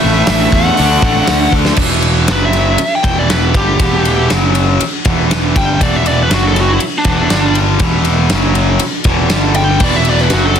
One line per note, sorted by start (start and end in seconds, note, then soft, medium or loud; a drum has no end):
0.00 0.77 A2 medium
0.00 0.78 E3 medium
0.00 0.77 A3 medium
0.00 0.78 A3 loud
0.00 0.77 E4 medium
0.00 0.76 B4 medium
0.00 0.29 E5 medium
0.04 0.21 A1 medium
0.27 0.47 A1 medium
0.27 0.55 E5 medium
0.27 snare loud
0.27 open hi-hat medium
0.52 0.71 E2 medium
0.52 1.51 F#5 medium
0.52 kick medium
0.77 0.97 D2 medium
0.77 1.77 D3 loud
0.77 1.78 A3 loud
0.77 1.77 D4 medium
0.77 1.79 D4 loud
0.77 1.77 A4 medium
0.77 1.78 E5 medium
0.77 open hi-hat medium
1.02 1.20 A1 medium
1.02 kick medium
1.27 1.47 D2 medium
1.27 snare loud
1.27 open hi-hat medium
1.52 1.71 D2 medium
1.52 kick medium
1.65 snare medium
1.76 2.25 E1 loud
1.76 2.27 E2 medium
1.76 2.28 B2 medium
1.76 2.28 E3 medium
1.76 kick loud
1.76 crash loud
2.02 ride medium
2.28 2.76 F#1 medium
2.28 2.79 F#2 medium
2.28 2.79 C#3 medium
2.28 2.79 F#3 medium
2.28 snare loud
2.28 ride medium
2.32 2.43 B4 medium
2.45 2.92 E5 loud
2.53 snare soft
2.53 ride medium
2.78 muted distorted electric guitar stroke medium
2.78 muted picked electric bass stroke soft
2.78 ride loud
2.95 3.18 G5 loud
3.03 3.51 E1 medium
3.03 3.53 E2 medium
3.03 3.54 B2 loud
3.03 3.54 E3 loud
3.03 kick loud
3.03 ride medium
3.19 3.30 D5 medium
3.30 3.54 B4 medium
3.30 snare loud
3.30 ride medium
3.54 3.78 G1 medium
3.54 3.79 G2 medium
3.54 3.79 D3 loud
3.54 3.80 G3 loud
3.54 4.29 G4 medium
3.54 kick loud
3.54 ride medium
3.79 4.26 E1 medium
3.79 4.29 E2 medium
3.79 4.29 B2 medium
3.79 4.30 E3 loud
3.79 kick loud
3.79 ride loud
4.05 ride medium
4.30 4.77 F#1 medium
4.30 4.80 F#2 medium
4.30 4.80 C#3 medium
4.30 4.81 F#3 medium
4.30 snare loud
4.30 ride medium
4.55 ride medium
4.81 muted picked electric bass stroke soft
4.81 muted distorted electric guitar stroke medium
4.81 ride loud
5.05 5.52 E1 medium
5.05 5.55 E2 medium
5.05 5.56 B2 loud
5.05 5.56 E3 loud
5.05 kick loud
5.05 ride medium
5.31 snare loud
5.31 ride loud
5.56 5.79 G1 medium
5.56 5.80 G2 medium
5.56 5.81 D3 loud
5.56 5.81 G3 medium
5.56 5.81 G5 loud
5.56 kick loud
5.56 ride medium
5.81 6.28 E1 medium
5.81 6.30 E2 medium
5.81 6.31 B2 medium
5.81 6.32 E3 loud
5.81 5.96 D5 medium
5.81 kick loud
5.81 ride loud
5.96 6.07 E5 medium
6.06 6.19 D5 medium
6.06 ride medium
6.23 6.33 B4 medium
6.30 6.78 F#1 medium
6.30 6.80 F#2 medium
6.30 6.80 C#3 medium
6.30 6.81 F#3 loud
6.30 6.45 F#4 medium
6.30 snare loud
6.30 ride loud
6.48 6.58 A4 medium
6.56 snare soft
6.56 ride medium
6.60 6.73 F#4 medium
6.73 6.83 E4 medium
6.80 muted picked electric bass stroke soft
6.80 muted distorted electric guitar stroke medium
6.80 ride loud
6.98 7.08 D4 medium
7.05 7.29 E1 medium
7.05 7.30 E2 loud
7.05 7.31 B2 medium
7.05 7.31 E3 loud
7.05 kick loud
7.05 ride medium
7.09 7.56 D4 loud
7.30 7.78 G1 medium
7.30 7.80 G2 medium
7.30 7.80 D3 loud
7.30 7.81 G3 loud
7.30 snare loud
7.30 ride medium
7.55 ride medium
7.80 8.28 E1 loud
7.80 8.30 E2 medium
7.80 8.30 B2 medium
7.80 8.31 E3 medium
7.80 kick loud
7.80 ride medium
8.05 ride medium
8.30 8.78 F#1 loud
8.30 8.81 F#2 loud
8.30 8.81 C#3 loud
8.30 8.81 F#3 medium
8.30 snare loud
8.30 ride loud
8.55 ride medium
8.80 muted picked electric bass stroke soft
8.80 muted distorted electric guitar stroke medium
8.80 ride loud
9.04 9.29 E1 medium
9.04 9.30 E2 loud
9.04 9.31 B2 medium
9.04 9.31 E3 medium
9.04 kick loud
9.04 ride medium
9.30 9.78 G1 medium
9.30 9.81 G2 medium
9.30 9.81 D3 medium
9.30 9.81 G3 loud
9.30 snare loud
9.30 ride medium
9.54 9.81 G5 loud
9.54 ride medium
9.79 10.28 E1 medium
9.79 10.32 E2 medium
9.79 10.32 B2 loud
9.79 10.31 E3 medium
9.79 10.32 E3 loud
9.79 10.31 B3 medium
9.79 10.60 F#4 medium
9.79 kick loud
9.79 crash loud
9.84 9.96 D5 medium
9.96 10.08 E5 medium
10.05 ride medium
10.10 10.21 D5 medium
10.18 10.33 B4 medium
10.18 snare soft
10.30 10.60 F#1 medium
10.30 10.60 F#2 medium
10.30 10.60 C#3 medium
10.30 10.60 F#3 medium
10.30 10.60 F#3 loud
10.30 10.60 C#4 medium
10.30 10.45 F#4 medium
10.30 snare loud
10.30 ride loud
10.46 10.58 A4 medium
10.56 ride medium